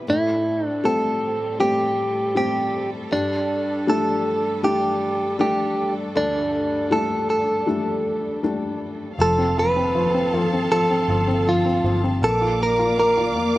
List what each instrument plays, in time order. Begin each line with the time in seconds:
Already playing: string section G3
0.07 string section A2 C4 A4, felt piano A2, clean electric guitar E4
0.67 clean electric guitar D4
0.84 felt piano G3 A3 C4, clean electric guitar A4
1.60 felt piano G3 A3 C4, clean electric guitar G4
2.35 felt piano G3 A3 C4, clean electric guitar G4
3.11 string section G2 D4, felt piano G2, clean electric guitar D4
3.87 felt piano G3 A3 D4, clean electric guitar A4
4.63 felt piano G3 A3 D4, clean electric guitar G4
5.39 felt piano G3 A3 D4, clean electric guitar G4
6.15 felt piano D2, clean electric guitar D4
6.91 felt piano G3 A3 D4, clean electric guitar A4
7.30 clean electric guitar A4
7.67 felt piano G3 A3 D4
8.43 felt piano G3 A3 D4
9.18 fingered electric bass F1, felt piano F3, string section C4 A4 F5 A5, clean electric guitar A4
9.38 felt piano C4
9.57 felt piano F3, clean electric guitar B4
9.76 felt piano C4
9.95 felt piano F3
10.14 felt piano C4
10.34 felt piano F3
10.39 clean electric guitar A4
10.53 felt piano C4
10.72 felt piano F3, clean electric guitar A4
10.90 felt piano C4
11.08 fingered electric bass G1, felt piano F3
11.28 felt piano C4
11.47 felt piano F3, clean electric guitar F4
11.65 felt piano C4
11.84 fingered electric bass G1, felt piano F3
12.04 felt piano C4
12.22 fingered electric bass A#1, felt piano A#3, string section A#3 D5 F5 D6, clean electric guitar A4
12.41 felt piano F4
12.61 felt piano A#3, clean electric guitar A#4
12.79 felt piano F4
12.98 felt piano A#3, clean electric guitar A#4
13.17 felt piano F4
13.36 fingered electric bass F2, felt piano A#3